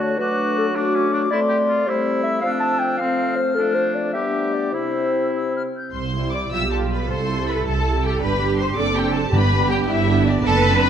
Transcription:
0.00 0.18 D3 medium
0.00 0.16 A3 medium
0.00 0.17 F#4 medium
0.00 0.19 F#4 medium
0.00 0.20 C#5 medium
0.00 0.18 A5 soft
0.18 1.30 F#3 medium
0.18 0.73 A3 medium
0.18 0.73 D4 medium
0.18 0.77 F#4 medium
0.18 0.56 B4 medium
0.18 0.75 D6 medium
0.58 0.66 A4 medium
0.74 1.29 A3 medium
0.74 1.30 D4 medium
0.74 0.96 D4 medium
0.74 1.30 F#4 medium
0.74 1.31 D6 soft
0.95 1.12 C#4 medium
1.13 1.21 D4 medium
1.30 1.85 A3 medium
1.30 1.89 A3 medium
1.30 1.86 C4 soft
1.30 1.40 E4 medium
1.30 1.89 D5 medium
1.30 1.90 C6 soft
1.49 1.57 G4 medium
1.68 1.90 F4 medium
1.87 2.43 G3 medium
1.87 2.41 A3 medium
1.87 2.41 C4 medium
1.87 2.44 E4 medium
1.87 2.23 C5 medium
1.87 3.00 E6 medium
2.23 2.41 E5 medium
2.41 3.40 F3 medium
2.41 2.98 A3 medium
2.41 2.98 C4 soft
2.41 2.99 D4 medium
2.41 2.50 F5 medium
2.60 2.81 A5 medium
2.79 2.97 G5 medium
2.97 3.56 A3 medium
2.97 3.56 C4 medium
2.97 3.36 C4 medium
2.97 3.37 F5 medium
2.97 3.90 F6 soft
3.36 3.56 C5 medium
3.55 4.16 F3 medium
3.55 4.15 A3 medium
3.55 4.13 D4 soft
3.55 4.12 D4 medium
3.55 3.76 A4 medium
3.75 3.97 C5 medium
3.95 4.12 D5 medium
4.13 4.76 G3 medium
4.13 4.74 B3 soft
4.13 4.73 D4 medium
4.13 4.73 G4 medium
4.13 4.55 E5 medium
4.13 4.76 D6 soft
4.54 4.72 D5 medium
4.72 5.75 C3 soft
4.72 5.72 C4 soft
4.72 5.74 E4 medium
4.72 5.63 E4 medium
4.72 5.72 C5 medium
4.72 5.31 E6 soft
5.35 5.54 E6 medium
5.56 5.62 F6 medium
5.77 5.95 G6 medium
5.94 6.45 C2 medium
5.94 6.30 C5 medium
5.94 6.30 C6 medium
6.14 6.51 G3 soft
6.14 6.51 E4 soft
6.32 6.52 D5 medium
6.32 6.52 D6 medium
6.52 7.02 B1 medium
6.52 6.70 G3 soft
6.52 6.69 F4 medium
6.52 7.05 G4 medium
6.52 6.60 E5 medium
6.52 6.71 E6 medium
6.70 7.08 G3 soft
6.70 7.08 F4 medium
6.70 6.79 A4 medium
6.70 6.79 A5 medium
6.91 7.09 B4 medium
6.91 7.09 B5 medium
7.08 7.59 C2 medium
7.08 8.21 A4 medium
7.08 7.46 C5 medium
7.08 7.47 C6 medium
7.27 7.83 G3 medium
7.27 7.83 E4 medium
7.48 7.66 B4 medium
7.48 7.66 B5 medium
7.65 8.14 C2 medium
7.65 8.02 A4 medium
7.65 8.03 A5 medium
7.84 8.20 G3 medium
7.84 8.21 E4 soft
8.03 8.21 G4 medium
8.03 8.21 G5 medium
8.20 8.70 G1 medium
8.20 8.39 G3 medium
8.20 8.39 D4 medium
8.20 8.76 G4 medium
8.20 8.58 B4 medium
8.20 8.57 B5 medium
8.40 8.76 G3 medium
8.40 8.75 D4 medium
8.57 8.67 C5 medium
8.57 8.76 C6 medium
8.75 9.26 F#1 medium
8.75 8.95 C4 medium
8.75 8.95 D4 medium
8.75 9.32 A4 medium
8.75 8.96 D5 medium
8.75 8.95 D6 loud
8.95 9.32 C4 medium
8.95 9.32 D4 medium
8.95 9.14 G4 medium
8.95 9.14 G5 loud
9.14 9.32 A4 medium
9.14 9.32 A5 medium
9.32 9.81 G1 medium
9.32 9.84 G2 medium
9.32 9.49 B3 medium
9.32 9.50 D4 medium
9.32 10.42 G4 medium
9.32 9.69 B4 medium
9.32 9.70 B5 loud
9.51 10.05 B3 medium
9.51 10.06 D4 medium
9.70 9.88 G4 medium
9.70 9.78 G5 medium
9.87 10.37 G1 medium
9.87 10.25 E4 medium
9.87 10.25 E5 loud
10.07 10.44 B3 medium
10.07 10.44 D4 medium
10.25 10.33 D4 medium
10.25 10.45 D5 medium
10.44 10.90 F#1 medium
10.44 10.81 A4 loud
10.44 10.90 B4 loud
10.44 10.82 A5 loud
10.63 10.90 C4 medium
10.63 10.90 D4 medium
10.81 10.90 B4 loud
10.81 10.90 B5 loud

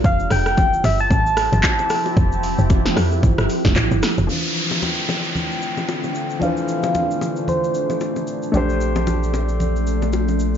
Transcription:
0.04 0.29 F1 loud
0.04 4.25 F3 medium
0.04 4.25 C4 medium
0.04 4.25 E4 medium
0.04 4.25 G4 medium
0.04 0.33 F5 loud
0.04 kick loud
0.04 low conga medium
0.04 shaker medium
0.20 shaker medium
0.30 0.80 F1 loud
0.30 0.87 G5 loud
0.30 cross-stick medium
0.30 open hi-hat medium
0.30 shaker loud
0.46 cross-stick medium
0.46 shaker medium
0.57 kick loud
0.57 high bongo medium
0.57 low conga medium
0.57 shaker medium
0.73 shaker medium
0.84 1.09 G1 loud
0.84 1.02 E5 loud
0.84 open hi-hat medium
0.84 low bongo medium
0.84 shaker loud
0.99 3.77 A5 loud
0.99 shaker medium
1.11 1.50 A1 loud
1.11 kick loud
1.11 low conga medium
1.11 shaker medium
1.26 shaker medium
1.37 cross-stick loud
1.37 open hi-hat medium
1.37 shaker loud
1.52 1.63 G1 medium
1.52 low bongo medium
1.52 shaker soft
1.63 kick medium
1.63 clap medium
1.63 high bongo medium
1.63 shaker medium
1.79 low bongo soft
1.79 shaker medium
1.90 cross-stick medium
1.90 open hi-hat medium
1.90 shaker medium
2.05 high bongo medium
2.05 shaker medium
2.17 2.56 F1 loud
2.17 kick loud
2.17 low conga medium
2.17 shaker medium
2.32 shaker medium
2.43 open hi-hat medium
2.43 shaker loud
2.58 2.94 F1 loud
2.58 shaker medium
2.70 kick loud
2.70 high bongo medium
2.70 low conga medium
2.70 shaker medium
2.86 snare medium
2.86 shaker medium
2.96 3.21 F2 loud
2.96 cross-stick loud
2.96 open hi-hat medium
2.96 low bongo medium
2.96 shaker loud
3.12 shaker medium
3.23 3.37 G1 loud
3.23 kick loud
3.23 low conga medium
3.23 shaker medium
3.38 3.49 G1 medium
3.38 cross-stick loud
3.38 shaker soft
3.50 open hi-hat medium
3.50 shaker loud
3.65 3.75 F1 medium
3.65 kick loud
3.65 snare medium
3.65 low bongo medium
3.65 shaker medium
3.76 3.90 A1 loud
3.76 kick medium
3.76 clap medium
3.76 high bongo medium
3.76 shaker medium
3.91 4.02 G1 medium
3.91 low bongo soft
3.91 shaker medium
4.03 cross-stick medium
4.03 snare medium
4.03 open hi-hat medium
4.03 shaker medium
4.18 4.28 F1 medium
4.18 high bongo medium
4.18 shaker medium
4.27 8.50 D3 medium
4.27 6.38 E3 medium
4.27 6.36 F3 medium
4.27 10.57 A3 medium
4.27 8.50 C4 medium
4.27 6.37 D4 medium
4.27 6.39 D4 medium
4.27 8.50 F5 medium
4.27 4.79 F5 loud
4.27 downlifter medium
4.27 low conga medium
4.27 shaker medium
4.32 6.39 C5 medium
4.45 shaker medium
4.56 shaker medium
4.71 low bongo medium
4.71 shaker medium
4.82 6.38 G5 loud
4.82 high bongo medium
4.82 low conga medium
4.82 shaker medium
4.98 shaker medium
5.09 low bongo medium
5.09 shaker medium
5.24 shaker medium
5.35 low conga medium
5.35 shaker medium
5.51 shaker soft
5.62 shaker medium
5.77 low bongo medium
5.77 shaker soft
5.88 high bongo medium
5.88 shaker medium
6.04 low bongo soft
6.04 shaker soft
6.15 shaker medium
6.30 shaker medium
6.39 8.51 E3 medium
6.39 8.49 F3 medium
6.39 8.50 D4 medium
6.39 10.57 D4 medium
6.39 7.50 F5 loud
6.39 low conga medium
6.39 shaker medium
6.45 8.52 C5 medium
6.57 shaker medium
6.68 shaker medium
6.83 low bongo medium
6.83 shaker medium
6.95 high bongo medium
6.95 low conga medium
6.95 shaker medium
7.11 shaker medium
7.21 low bongo medium
7.21 shaker loud
7.36 shaker soft
7.48 8.28 C5 medium
7.48 low conga medium
7.48 shaker medium
7.64 shaker soft
7.74 shaker medium
7.90 low bongo medium
7.90 shaker soft
8.00 high bongo medium
8.00 shaker medium
8.16 low bongo soft
8.16 shaker soft
8.27 shaker medium
8.43 shaker medium
8.52 10.57 A#1 medium
8.52 10.57 A#2 medium
8.52 10.57 A3 medium
8.52 10.57 D4 medium
8.52 10.57 G4 medium
8.52 low conga medium
8.52 shaker medium
8.57 10.57 C5 medium
8.69 shaker medium
8.81 shaker medium
8.96 low bongo medium
8.96 shaker medium
9.07 high bongo medium
9.07 low conga medium
9.07 shaker medium
9.23 shaker medium
9.34 low bongo medium
9.34 shaker loud
9.49 shaker medium
9.60 low conga medium
9.60 shaker medium
9.76 shaker soft
9.87 shaker medium
10.02 low bongo medium
10.02 shaker soft
10.13 high bongo medium
10.13 shaker medium
10.28 low bongo soft
10.28 shaker soft
10.40 shaker medium

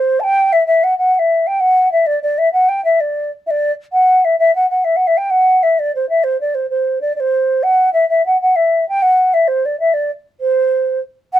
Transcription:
0.00 0.21 C5 medium
0.20 0.54 G5 medium
0.20 0.24 A5 medium
0.52 0.66 E5 medium
0.67 0.85 E5 medium
0.83 0.97 F#5 medium
0.98 1.14 F#5 medium
1.14 1.20 F#5 medium
1.19 1.48 E5 medium
1.47 1.61 G5 medium
1.60 1.91 F#5 medium
1.92 2.08 E5 medium
2.06 2.22 D5 medium
2.22 2.40 D5 medium
2.38 2.52 E5 medium
2.53 2.70 F#5 medium
2.68 2.84 G5 medium
2.84 3.02 E5 medium
3.00 3.31 D5 medium
3.46 3.72 D5 medium
3.46 3.51 E5 medium
3.92 4.26 F#5 medium
4.24 4.38 E5 medium
4.39 4.54 E5 medium
4.55 4.69 F#5 medium
4.70 4.86 F#5 medium
4.84 4.98 E5 medium
4.96 5.08 F#5 medium
5.07 5.19 E5 medium
5.17 5.32 G5 medium
5.30 5.64 F#5 medium
5.63 5.80 E5 medium
5.79 5.95 D5 medium
5.95 6.08 C5 medium
6.09 6.25 E5 medium
6.23 6.40 C5 medium
6.40 6.56 D5 medium
6.54 6.69 C5 medium
6.70 6.99 C5 medium
7.01 7.15 D5 medium
7.15 7.21 D5 medium
7.20 7.64 C5 medium
7.63 7.92 F#5 medium
7.93 8.07 E5 medium
8.09 8.25 E5 medium
8.26 8.40 F#5 medium
8.41 8.57 F#5 medium
8.56 8.87 E5 medium
8.88 9.03 G5 medium
9.02 9.35 F#5 medium
9.33 9.49 E5 medium
9.48 9.67 C5 medium
9.65 9.79 D5 medium
9.79 9.95 E5 medium
9.93 10.11 D5 medium
10.40 11.00 C5 medium
11.33 11.39 F#5 loud

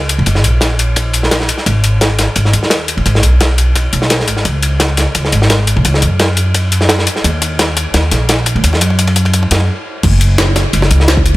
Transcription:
0.00 0.20 C#2 medium
0.09 closed hi-hat medium
0.09 ride medium
0.19 0.26 F#1 medium
0.19 ride soft
0.26 0.44 F#1 medium
0.26 kick medium
0.26 closed hi-hat medium
0.26 ride medium
0.35 snare soft
0.44 1.48 A#1 medium
0.44 closed hi-hat loud
0.44 ride medium
0.61 kick medium
0.61 snare loud
0.61 closed hi-hat medium
0.61 ride medium
0.79 closed hi-hat medium
0.79 ride medium
0.96 kick medium
0.96 closed hi-hat medium
0.96 ride medium
1.13 closed hi-hat medium
1.13 ride medium
1.23 snare medium
1.31 kick loud
1.31 snare loud
1.31 closed hi-hat medium
1.31 ride medium
1.40 snare medium
1.49 closed hi-hat medium
1.49 ride medium
1.58 snare soft
1.66 2.26 G#1 medium
1.66 kick medium
1.66 closed hi-hat medium
1.66 ride medium
1.84 closed hi-hat medium
1.84 ride medium
2.01 kick loud
2.01 snare loud
2.01 closed hi-hat medium
2.01 ride medium
2.19 snare soft
2.19 closed hi-hat medium
2.19 ride medium
2.36 2.52 G#1 medium
2.36 kick medium
2.36 closed hi-hat medium
2.36 ride medium
2.45 snare soft
2.53 2.99 D#2 medium
2.53 closed hi-hat medium
2.53 ride medium
2.63 snare medium
2.70 kick medium
2.70 snare loud
2.70 closed hi-hat medium
2.70 ride medium
2.88 closed hi-hat medium
2.88 ride medium
2.97 3.05 G#1 medium
2.97 ride soft
3.06 3.23 G#1 medium
3.06 kick medium
3.06 closed hi-hat medium
3.06 ride medium
3.15 snare medium
3.23 3.92 B1 medium
3.23 closed hi-hat medium
3.23 ride medium
3.41 kick loud
3.41 snare loud
3.41 closed hi-hat medium
3.41 ride medium
3.58 closed hi-hat medium
3.58 ride medium
3.76 kick loud
3.76 closed hi-hat medium
3.76 ride medium
3.93 4.28 B1 medium
3.93 closed hi-hat medium
3.93 ride medium
4.02 snare medium
4.10 kick medium
4.10 snare loud
4.10 closed hi-hat medium
4.10 ride medium
4.20 snare medium
4.28 4.44 G#1 medium
4.28 closed hi-hat medium
4.28 ride medium
4.37 snare soft
4.45 5.05 C#2 medium
4.45 kick loud
4.45 closed hi-hat medium
4.45 ride medium
4.63 closed hi-hat medium
4.63 ride medium
4.80 kick loud
4.80 snare loud
4.80 closed hi-hat medium
4.80 ride medium
4.97 snare medium
4.97 closed hi-hat medium
4.97 ride medium
5.15 5.31 C#2 medium
5.15 kick loud
5.15 closed hi-hat medium
5.15 ride medium
5.25 snare soft
5.32 5.78 G#1 medium
5.32 closed hi-hat medium
5.32 ride medium
5.42 snare medium
5.50 kick loud
5.50 snare loud
5.50 closed hi-hat medium
5.50 ride medium
5.67 closed hi-hat medium
5.67 ride medium
5.76 5.84 C#2 medium
5.76 ride soft
5.85 6.04 C#2 loud
5.85 kick loud
5.85 closed hi-hat medium
5.85 ride medium
5.94 snare medium
6.02 7.06 F#2 medium
6.02 closed hi-hat medium
6.02 ride medium
6.19 kick loud
6.19 snare loud
6.19 closed hi-hat medium
6.19 ride medium
6.37 closed hi-hat medium
6.37 ride medium
6.54 kick loud
6.54 closed hi-hat medium
6.54 ride medium
6.72 closed hi-hat medium
6.72 ride medium
6.81 snare medium
6.89 kick loud
6.89 snare loud
6.89 closed hi-hat medium
6.89 ride medium
6.99 snare medium
7.07 closed hi-hat medium
7.07 ride medium
7.16 snare soft
7.24 7.84 D#2 medium
7.24 kick loud
7.24 closed hi-hat medium
7.24 ride medium
7.42 kick loud
7.42 closed hi-hat loud
7.42 ride medium
7.59 kick loud
7.59 snare loud
7.59 closed hi-hat medium
7.59 ride medium
7.77 kick loud
7.77 closed hi-hat loud
7.77 ride medium
7.94 8.10 D#2 medium
7.94 kick loud
7.94 snare loud
7.94 closed hi-hat medium
7.94 ride medium
8.11 8.57 A#1 medium
8.11 kick loud
8.11 snare soft
8.11 closed hi-hat medium
8.11 ride medium
8.29 kick loud
8.29 snare loud
8.29 closed hi-hat medium
8.29 ride medium
8.46 kick loud
8.46 closed hi-hat loud
8.46 ride medium
8.55 8.63 D#2 loud
8.55 ride soft
8.64 8.81 D#2 loud
8.64 kick loud
8.64 closed hi-hat medium
8.64 ride medium
8.73 kick medium
8.73 snare medium
8.81 9.51 F#2 medium
8.81 kick loud
8.81 closed hi-hat loud
8.81 ride medium
8.90 kick medium
8.99 kick loud
8.99 closed hi-hat medium
8.99 ride medium
9.07 kick medium
9.07 ride medium
9.16 kick loud
9.16 closed hi-hat loud
9.25 kick medium
9.25 ride medium
9.33 kick loud
9.33 closed hi-hat medium
9.33 ride medium
9.43 kick medium
9.51 9.69 F#2 loud
9.51 kick loud
9.51 snare loud
9.51 closed hi-hat loud
9.51 ride medium
9.60 kick medium
10.03 10.63 F#1 loud
10.03 kick loud
10.03 closed hi-hat medium
10.03 crash loud
10.03 ride medium
10.21 closed hi-hat loud
10.21 ride medium
10.38 snare loud
10.38 closed hi-hat medium
10.38 ride medium
10.56 snare soft
10.56 closed hi-hat loud
10.56 ride medium
10.73 10.89 F#1 medium
10.73 closed hi-hat medium
10.73 ride medium
10.82 snare soft
10.91 11.36 C#2 medium
10.91 closed hi-hat loud
10.91 ride medium
11.00 snare medium
11.08 snare loud
11.08 closed hi-hat medium
11.08 ride medium
11.17 kick loud
11.26 closed hi-hat loud
11.26 ride medium

